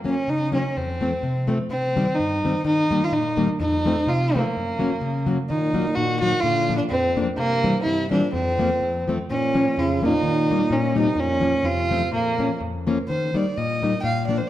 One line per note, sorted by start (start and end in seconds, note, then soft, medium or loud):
0.00 0.15 F#2 medium
0.04 0.14 F#3 medium
0.04 0.14 A#3 medium
0.04 0.15 C#4 medium
0.09 0.31 C#4 medium
0.28 0.63 C#3 medium
0.28 0.54 D#4 medium
0.52 0.62 F#3 medium
0.52 0.62 A#3 medium
0.52 0.63 C#4 medium
0.52 0.78 C#4 medium
0.76 1.12 F2 medium
0.76 1.49 C4 medium
1.01 1.10 F3 medium
1.01 1.11 A3 soft
1.01 1.11 C4 medium
1.23 1.59 C3 medium
1.47 1.57 F3 medium
1.47 1.58 A3 medium
1.47 1.58 C4 medium
1.69 2.06 C3 medium
1.69 2.17 C4 medium
1.96 2.06 D#3 medium
1.96 2.06 G3 medium
1.96 2.06 C4 medium
2.15 2.64 D#4 medium
2.19 2.55 G2 medium
2.44 2.54 D#3 medium
2.44 2.54 G3 soft
2.44 2.54 C4 medium
2.65 2.90 D#3 medium
2.65 3.06 D#4 loud
2.91 3.01 D#3 medium
2.91 3.01 G3 medium
2.91 3.01 A#3 medium
3.04 3.15 F4 medium
3.12 3.48 A#2 medium
3.12 3.49 D#4 medium
3.37 3.47 D#3 medium
3.37 3.47 G3 medium
3.37 3.47 A#3 medium
3.60 3.96 F2 medium
3.60 4.10 D#4 loud
3.85 3.95 F3 medium
3.85 3.95 A3 medium
3.85 3.96 C4 medium
4.07 4.43 C3 medium
4.07 4.38 F4 medium
4.35 4.44 F3 medium
4.35 4.44 A3 medium
4.35 5.30 A#3 medium
4.35 4.44 C4 medium
4.56 4.92 F#2 medium
4.79 4.89 F#3 medium
4.79 4.90 A#3 medium
4.79 4.90 C#4 medium
5.01 5.38 C#3 medium
5.27 5.37 F#3 medium
5.27 5.37 A#3 medium
5.27 5.38 C#4 medium
5.49 5.99 A#2 medium
5.49 5.73 D#3 medium
5.49 5.97 D#4 medium
5.74 5.85 F#3 medium
5.74 5.85 A#3 medium
5.74 5.85 D#4 medium
5.95 6.33 A#2 medium
5.95 6.23 D#3 medium
5.95 6.19 F#4 medium
6.20 6.44 D#3 medium
6.20 6.32 F#3 medium
6.20 6.33 A#3 medium
6.20 6.33 D#4 medium
6.20 6.42 F#4 loud
6.40 6.80 A#2 medium
6.40 6.80 D3 medium
6.40 6.77 F4 loud
6.69 6.80 F3 medium
6.69 6.80 A#3 medium
6.69 6.80 D4 medium
6.77 6.86 A#2 medium
6.77 6.83 D4 medium
6.89 7.25 F2 medium
6.89 7.27 F2 medium
6.89 7.24 C4 medium
7.16 7.27 F3 medium
7.16 7.27 A#3 medium
7.16 7.27 D4 medium
7.36 7.82 G2 medium
7.36 7.74 C3 medium
7.36 7.82 A#3 loud
7.63 7.74 E3 medium
7.63 7.74 G3 medium
7.63 7.74 C4 medium
7.83 8.22 G2 medium
7.83 8.09 C3 medium
7.83 8.09 E4 medium
8.10 8.30 A#2 medium
8.10 8.21 E3 medium
8.10 8.21 G3 medium
8.10 8.21 C4 medium
8.10 8.32 D4 medium
8.31 9.02 F2 medium
8.31 8.70 F2 medium
8.31 9.03 C4 medium
8.59 8.69 F3 medium
8.59 8.69 A#3 medium
8.59 8.70 C4 medium
8.81 9.17 F2 medium
9.08 9.17 F3 medium
9.08 9.18 A3 medium
9.08 9.18 C4 medium
9.30 9.80 A#2 medium
9.30 9.66 A#2 medium
9.30 9.80 C#4 loud
9.55 9.65 F3 medium
9.55 9.65 A#3 medium
9.55 9.65 C#4 medium
9.78 10.13 F2 medium
9.78 10.03 C#3 medium
9.78 10.04 F4 medium
10.02 10.73 A#2 medium
10.02 10.12 F3 medium
10.02 10.13 A#3 soft
10.02 10.12 C#4 medium
10.02 10.74 D#4 loud
10.23 10.51 D#3 medium
10.51 10.61 G3 medium
10.51 10.61 A#3 medium
10.51 10.61 D#4 medium
10.70 11.07 A#2 medium
10.70 10.96 A#2 medium
10.70 10.98 C#4 medium
10.95 11.18 C3 medium
10.95 11.06 G3 medium
10.95 11.07 A#3 medium
10.95 11.07 D#4 medium
10.99 11.21 D#4 medium
11.15 11.53 F2 medium
11.15 11.66 A#2 medium
11.20 11.66 C#4 loud
11.41 11.53 F3 medium
11.41 11.53 A#3 medium
11.41 11.53 C#4 medium
11.63 12.01 F2 medium
11.63 12.12 C3 medium
11.63 12.13 F4 loud
11.91 12.01 F3 medium
11.91 12.02 A3 medium
11.91 12.02 C4 medium
12.12 12.58 F2 medium
12.12 12.49 A#2 medium
12.12 12.58 A#3 medium
12.38 12.49 F3 medium
12.38 12.50 A#3 medium
12.38 12.50 C#4 medium
12.61 12.98 F2 medium
12.87 12.97 F3 medium
12.87 12.97 A#3 medium
12.87 12.98 C#4 medium
13.08 13.34 D#3 medium
13.08 13.38 C5 medium
13.34 13.45 G3 medium
13.34 13.45 A#3 medium
13.34 13.45 D#4 medium
13.34 13.59 D5 medium
13.57 13.94 A#2 medium
13.57 14.00 D#5 medium
13.82 13.93 G3 medium
13.82 13.93 A#3 medium
13.82 13.93 D#4 medium
14.00 14.40 A#2 medium
14.00 14.26 F5 medium
14.00 14.05 G5 medium
14.27 14.39 F3 medium
14.27 14.40 A#3 medium
14.27 14.40 D4 medium
14.27 14.39 D5 medium
14.37 14.49 C5 medium